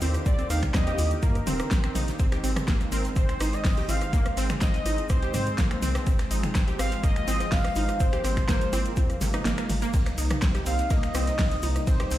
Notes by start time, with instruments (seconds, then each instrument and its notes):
Already playing: analog synth pad D3 D#3 A#3 G4
0.01 analog synth bass D#2, synth pluck C4, open hi-hat, high conga, shaker
0.14 cross-stick, closed hi-hat, shaker
0.26 analog synth bass D#2, synth pluck C4, soft synth lead D5, kick, closed hi-hat, shaker
0.39 synth pluck C4, closed hi-hat, shaker
0.50 analog synth bass D#2, synth pluck D#4, soft synth lead F5, cross-stick, snare, open hi-hat, shaker
0.62 finger snap, kick, snare, closed hi-hat, mid tom, shaker
0.73 analog synth bass D#2, synth pluck C4, soft synth lead D#5, kick, cross-stick, snare, closed hi-hat, shaker
0.87 synth pluck G4, snare, closed hi-hat, shaker
0.98 analog synth bass D#2, open hi-hat, high conga, shaker
1.11 closed hi-hat, shaker
1.22 analog synth bass G2, synth pluck A#3, soft synth lead A#4, kick, closed hi-hat, high conga, shaker
1.35 cross-stick, closed hi-hat, shaker
1.47 analog synth bass D#1, synth pluck C4, open hi-hat, mid tom, shaker
1.60 cross-stick, closed hi-hat, shaker
1.71 analog synth bass A#1, synth pluck C4, kick, snare, closed hi-hat, shaker
1.84 synth pluck C4, finger snap, cross-stick, closed hi-hat, shaker
1.95 analog synth bass A#1, synth pluck D#4, open hi-hat, mid tom, shaker
2.08 snare, closed hi-hat, shaker
2.19 analog synth bass G#1, analog synth pad G#3 C4, synth pluck C4, kick, closed hi-hat, shaker
2.32 synth pluck G4, finger snap, cross-stick, snare, closed hi-hat, shaker
2.44 analog synth bass G#1, synth pluck C4, open hi-hat, shaker
2.56 finger snap, cross-stick, closed hi-hat, mid tom, shaker
2.67 analog synth bass G#1, synth pluck A#3, kick, snare, closed hi-hat, shaker
2.80 cross-stick, snare, closed hi-hat, shaker
2.92 analog synth bass G#1, synth pluck C4, soft synth lead A#4, open hi-hat, shaker
3.04 snare, closed hi-hat, shaker
3.16 analog synth bass G#1, synth pluck C4, soft synth lead C5, kick, cross-stick, closed hi-hat, shaker
3.29 finger snap, closed hi-hat, shaker
3.40 analog synth bass G#1, synth pluck D#4, cross-stick, snare, open hi-hat, high conga, shaker
3.42 shaker
3.53 soft synth lead D#5, snare, closed hi-hat, shaker
3.64 analog synth bass G#1, synth pluck C4, kick, cross-stick, snare, closed hi-hat, open hi-hat, shaker
3.77 synth pluck G4, snare, closed hi-hat, shaker
3.89 analog synth bass G#1, synth pluck C4, soft synth lead F5, open hi-hat, high conga, shaker
4.01 cross-stick, closed hi-hat, shaker
4.13 analog synth bass G#1, synth pluck A#3, kick, closed hi-hat, shaker
4.25 cross-stick, closed hi-hat, shaker
4.37 analog synth bass G#1, synth pluck C4, snare, open hi-hat, shaker
4.49 finger snap, cross-stick, snare, closed hi-hat, mid tom, shaker
4.60 analog synth bass G#1, synth pluck C4, soft synth lead D#5, kick, snare, closed hi-hat, shaker
4.74 snare, closed hi-hat, shaker
4.86 analog synth bass G#1, synth pluck D#4, cross-stick, open hi-hat, high conga, shaker
4.98 closed hi-hat, shaker
5.09 analog synth bass C2, synth pluck C4, soft synth lead C5, kick, cross-stick, closed hi-hat, high conga, shaker
5.22 synth pluck G4, closed hi-hat, shaker
5.34 analog synth bass G#2, synth pluck C4, cross-stick, open hi-hat, mid tom, shaker
5.46 closed hi-hat, shaker
5.58 analog synth bass C2, synth pluck A#3, kick, snare, closed hi-hat, shaker
5.71 finger snap, cross-stick, closed hi-hat, shaker
5.82 analog synth bass C2, synth pluck C4, open hi-hat, mid tom, shaker
5.95 cross-stick, snare, closed hi-hat, shaker
6.06 analog synth bass G#1, analog synth pad F3, synth pluck C4, kick, closed hi-hat, shaker
6.19 finger snap, cross-stick, snare, closed hi-hat, shaker
6.31 analog synth bass G#1, synth pluck D#4, open hi-hat, shaker
6.43 finger snap, closed hi-hat, mid tom, shaker
6.55 analog synth bass G#1, synth pluck C4, kick, cross-stick, snare, closed hi-hat, shaker
6.68 synth pluck G4, snare, closed hi-hat, shaker
6.79 analog synth bass G#1, synth pluck C4, soft synth lead F5, cross-stick, open hi-hat, shaker
6.91 snare, closed hi-hat, shaker
7.03 analog synth bass G#1, synth pluck A#3, soft synth lead D#5, kick, cross-stick, closed hi-hat, shaker
7.16 finger snap, closed hi-hat, shaker
7.27 analog synth bass G#1, synth pluck C4, snare, open hi-hat, high conga, shaker
7.40 cross-stick, snare, closed hi-hat, shaker
7.51 analog synth bass G#1, synth pluck C4, soft synth lead F5, kick, snare, closed hi-hat, open hi-hat, shaker
7.64 cross-stick, snare, closed hi-hat, shaker
7.75 analog synth bass G#1, synth pluck D#4, open hi-hat, high conga, shaker
7.88 cross-stick, closed hi-hat, shaker
8.00 analog synth bass G#1, analog synth pad A#3, synth pluck C4, soft synth lead C5, kick, closed hi-hat, shaker
8.13 synth pluck G4, finger snap, closed hi-hat, shaker
8.24 analog synth bass G#1, synth pluck C4, cross-stick, snare, open hi-hat, shaker
8.37 finger snap, kick, snare, closed hi-hat, mid tom, shaker
8.49 analog synth bass G#1, synth pluck A#3, kick, cross-stick, snare, closed hi-hat, shaker
8.61 snare, closed hi-hat, shaker
8.73 analog synth bass G#1, synth pluck C4, cross-stick, open hi-hat, high conga, shaker
8.85 closed hi-hat, shaker
8.96 analog synth bass D#2, synth pluck C4, kick, closed hi-hat, high conga, shaker
9.10 cross-stick, closed hi-hat, shaker
9.21 analog synth bass G#1, synth pluck C3, snare, open hi-hat, mid tom, shaker
9.33 synth pluck D#4, cross-stick, closed hi-hat, shaker
9.45 analog synth bass G#1, synth pluck A#3, snare, closed hi-hat, shaker
9.57 synth pluck A#3, finger snap, cross-stick, closed hi-hat, shaker
9.69 analog synth bass G#1, open hi-hat, mid tom, shaker
9.81 synth pluck A#3, closed hi-hat, shaker
9.93 analog synth bass C2, analog synth pad C3 G3 A#3 D#4, synth pluck C4, kick, closed hi-hat, ride, shaker
10.05 finger snap, cross-stick, snare, closed hi-hat, shaker
10.18 analog synth bass C2, synth pluck D#4, open hi-hat, shaker
10.30 finger snap, cross-stick, closed hi-hat, mid tom, shaker
10.41 analog synth bass C2, synth pluck C4, kick, snare, closed hi-hat, ride, shaker
10.55 synth pluck G4, cross-stick, snare, closed hi-hat, shaker
10.66 analog synth bass C2, synth pluck C4, soft synth lead F5, open hi-hat, shaker
10.79 snare, closed hi-hat, shaker
10.90 analog synth bass C2, synth pluck A#3, soft synth lead D#5, kick, cross-stick, closed hi-hat, ride, shaker
11.03 finger snap, closed hi-hat, shaker
11.14 analog synth bass C2, synth pluck C4, cross-stick, snare, open hi-hat, high conga, shaker
11.27 snare, closed hi-hat, shaker
11.38 analog synth bass C2, synth pluck C4, kick, cross-stick, snare, closed hi-hat, open hi-hat, ride, shaker
11.51 snare, closed hi-hat, shaker
11.62 analog synth bass C2, synth pluck D#4, open hi-hat, high conga, shaker
11.76 cross-stick, closed hi-hat, shaker
11.87 analog synth bass C2, synth pluck C4, soft synth lead C5, kick, closed hi-hat, ride, shaker
12.00 synth pluck G4, cross-stick, closed hi-hat, shaker
12.11 analog synth bass C2, synth pluck C4, snare, open hi-hat, shaker